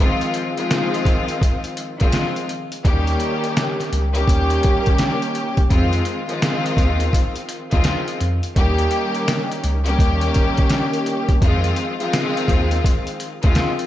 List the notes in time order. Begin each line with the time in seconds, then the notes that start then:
0.00 D#3 F3 G#3 C4 F4
0.21 closed hi-hat
0.34 closed hi-hat
0.56 D#3 F3 G#3 C4 F4, closed hi-hat
0.71 snare, closed hi-hat
0.94 closed hi-hat
1.05 kick, closed hi-hat
1.28 closed hi-hat
1.42 kick, closed hi-hat
1.64 closed hi-hat
1.77 closed hi-hat
1.99 D#3 F3 G#3 C4 F4, kick, closed hi-hat
2.12 snare, closed hi-hat
2.36 closed hi-hat
2.49 closed hi-hat
2.72 closed hi-hat
2.84 D#2 D#3 G3 A#3 C#4 G4, kick, closed hi-hat
3.07 closed hi-hat
3.20 closed hi-hat
3.44 closed hi-hat
3.57 snare, closed hi-hat
3.80 snare, closed hi-hat
3.93 C#2, closed hi-hat
4.13 D#3 G3 A#3 C#4 G4, closed hi-hat
4.28 D#2, kick, closed hi-hat
4.50 closed hi-hat
4.63 kick, closed hi-hat
4.86 kick, closed hi-hat
4.98 snare, closed hi-hat
5.22 closed hi-hat
5.35 closed hi-hat
5.57 kick, closed hi-hat
5.70 F2 D#3 F3 G#3 C4 F4, kick, closed hi-hat
5.93 closed hi-hat
6.05 closed hi-hat
6.28 D#3 F3 G#3 C4 F4, closed hi-hat
6.42 snare, closed hi-hat
6.66 closed hi-hat
6.77 D#2, kick, closed hi-hat
7.00 closed hi-hat
7.13 kick, closed hi-hat
7.36 closed hi-hat
7.49 closed hi-hat
7.71 D#2 D#3 F3 G#3 C4 F4, kick, closed hi-hat
7.84 snare, closed hi-hat
8.08 closed hi-hat
8.20 F2, closed hi-hat
8.43 closed hi-hat
8.56 D#2 D#3 G3 A#3 C#4 G4, kick, closed hi-hat
8.78 closed hi-hat
8.91 closed hi-hat
9.14 closed hi-hat
9.28 snare, closed hi-hat
9.51 closed hi-hat
9.64 C#2, closed hi-hat
9.85 D#3 G3 A#3 C#4 G4, closed hi-hat
9.99 D#2, kick, closed hi-hat
10.21 closed hi-hat
10.34 kick, closed hi-hat
10.57 kick, closed hi-hat
10.69 snare, closed hi-hat
10.93 closed hi-hat
11.06 closed hi-hat
11.29 kick, closed hi-hat
11.42 F2 D#3 F3 G#3 C4 F4, kick, closed hi-hat
11.64 closed hi-hat
11.76 closed hi-hat
11.99 D#3 F3 G#3 C4 F4, closed hi-hat
12.13 snare, closed hi-hat
12.37 closed hi-hat
12.48 D#2, kick, closed hi-hat
12.71 closed hi-hat
12.84 kick, closed hi-hat
13.07 closed hi-hat
13.20 closed hi-hat
13.42 D#2 D#3 F3 G#3 C4 F4, kick, closed hi-hat
13.55 snare, closed hi-hat
13.79 closed hi-hat